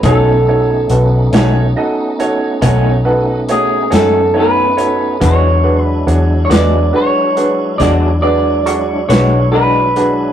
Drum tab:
HH |x-xx-xx-xx-x|x-xx-xx-xx-x|
SD |---o-----o--|---o--o--o--|
BD |o-----o-----|o-----o-----|